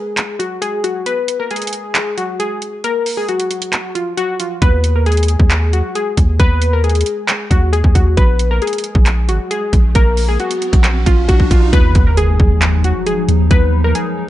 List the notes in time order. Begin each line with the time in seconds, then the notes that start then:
Already playing: G#4
0.17 clap, closed hi-hat
0.39 F#4, closed hi-hat
0.62 G#4, closed hi-hat
0.84 F#4, closed hi-hat
1.06 B4, closed hi-hat
1.28 closed hi-hat
1.40 A#4
1.51 G#4, closed hi-hat
1.56 closed hi-hat
1.62 closed hi-hat
1.67 closed hi-hat
1.73 closed hi-hat
1.95 clap, closed hi-hat
2.17 F#4, closed hi-hat
2.40 G#4, closed hi-hat
2.62 closed hi-hat
2.84 A#4, closed hi-hat
3.06 open hi-hat
3.17 G#4
3.28 F#4, closed hi-hat
3.40 closed hi-hat
3.51 closed hi-hat
3.62 closed hi-hat
3.73 clap, closed hi-hat
3.95 F4, closed hi-hat
4.17 F#4, closed hi-hat
4.40 F4, closed hi-hat
4.62 D#2 B4, kick, closed hi-hat
4.84 closed hi-hat
4.96 A#4
5.06 G#4, closed hi-hat
5.12 closed hi-hat
5.17 closed hi-hat
5.23 closed hi-hat
5.28 closed hi-hat
5.40 D#2, kick
5.51 clap, closed hi-hat
5.73 F#4, closed hi-hat
5.95 G#4, closed hi-hat
6.17 D#2, kick, closed hi-hat
6.40 D#2 B4, kick, closed hi-hat
6.62 closed hi-hat
6.73 A#4
6.84 G#4, closed hi-hat
6.89 closed hi-hat
6.95 closed hi-hat
7.01 closed hi-hat
7.06 closed hi-hat
7.28 clap, closed hi-hat
7.50 D#2 F#4, kick, closed hi-hat
7.73 G#4, closed hi-hat
7.84 D#2, kick
7.95 D#2 F#4, kick, closed hi-hat
8.17 A#1 B4, kick, closed hi-hat, riser
8.39 closed hi-hat
8.51 A#4
8.62 G#4, closed hi-hat
8.67 closed hi-hat
8.73 closed hi-hat
8.78 closed hi-hat
8.84 closed hi-hat
8.95 A#1, kick
9.06 clap, closed hi-hat
9.28 G#1 F#4, closed hi-hat
9.51 G#4, closed hi-hat
9.73 A#1, kick, closed hi-hat
9.95 A#1 A#4, kick, closed hi-hat
10.17 open hi-hat
10.29 G#4
10.40 F#4, closed hi-hat
10.51 closed hi-hat
10.62 closed hi-hat
10.73 A#1, kick, closed hi-hat
10.84 clap, closed hi-hat
11.06 A#1 F4, kick, closed hi-hat
11.29 A#1 F#4, kick, closed hi-hat
11.40 kick
11.51 A#1 F4, kick, closed hi-hat
11.73 D#2 F3 F#3 D#4 B4, kick, closed hi-hat, impact
11.95 D#2, kick, closed hi-hat
12.07 A#4
12.17 G#4, closed hi-hat
12.40 D#2, kick
12.62 clap, closed hi-hat
12.84 F#4, closed hi-hat
13.06 G#4, closed hi-hat
13.29 D#2, closed hi-hat
13.51 D#2 B4, kick, closed hi-hat
13.84 A#4
13.95 G#4, closed hi-hat